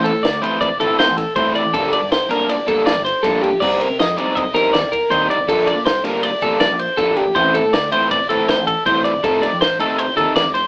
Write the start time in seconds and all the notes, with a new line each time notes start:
Already playing: E3 A3 C4 E4
0.04 A4, ride
0.14 A2
0.23 D2 D5, snare, ride
0.42 E3 A3 C4 E4 C5, ride
0.61 D5, kick, ride
0.80 G1 E3 A3 C4 E4 A4, ride
0.99 C2 C5, snare, ride
1.09 A1
1.17 A4, kick, snare, ride
1.36 C2 E3 A3 C4 E4 C5, kick, ride
1.55 D5, ride
1.65 A1
1.74 G1 D3 G3 A#3 D4 A4, kick, ride
1.93 D5, ride
2.03 G2
2.11 C2 C5, snare, ride
2.29 D3 G3 A#3 D4 A#4, snare, ride
2.49 D5, snare, ride
2.67 F1 D3 G3 A#3 D4 A4, kick, ride
2.86 A#1 D5, snare, ride
2.97 G1
3.05 C5, snare, ride
3.23 A#1 D3 G3 A#3 D4 A4, kick, snare, ride
3.42 G4, ride
3.52 A#1
3.60 C2 C3 G3 C4 D#4 D5, kick, crash
3.81 A#4, ride
3.90 C3
4.00 F2 D#5, snare, ride
4.17 C3 G3 C4 D#4 D5, ride
4.35 D#5, kick, ride
4.54 A#1 C3 G3 C4 D#4 A#4, snare, ride
4.73 D#2 D5, snare, ride
4.83 C2
4.92 A#4, kick, ride
5.10 D#2 C3 G3 C4 D#4 C5, kick, ride
5.30 D5, ride
5.38 C2
5.48 A#1 D3 G3 A#3 D4 A4, kick, ride
5.67 D5, ride
5.75 A#2
5.85 C2 C5, snare, ride
6.04 D3 G3 A#3 D4 A#4, snare, ride
6.23 D5, ride
6.42 F1 D3 G3 A#3 D4 A4, kick, ride
6.60 A#1 D5, snare, ride
6.71 A#1
6.79 C5, ride
6.97 A#1 D3 G3 A#3 D4 A4, kick, snare, ride
7.17 G4, ride
7.27 A#1
7.35 A1 E3 A3 C4 E4 C5, kick, ride
7.54 A4, ride
7.65 A2
7.73 D2 D5, snare, ride
7.92 E3 A3 C4 E4 C5, ride
8.11 D5, kick, ride
8.29 G1 E3 A3 C4 E4 A4, ride
8.48 C2 C5, snare, ride
8.59 A1
8.67 A4, kick, ride
8.86 C2 E3 A3 C4 E4 C5, kick, ride
9.04 D5, ride
9.15 G1
9.23 F1 C3 D#3 A3 D#4 A4, kick, ride
9.42 D5, snare, ride
9.53 F2
9.61 A1 C5, snare, ride
9.79 C3 D#3 A3 D#4 A4, ride
9.99 C5, ride
10.17 D#2 C3 D#3 A3 D#4 A4, kick, ride
10.36 A1 D5, snare, ride
10.46 F1
10.54 C5, snare, ride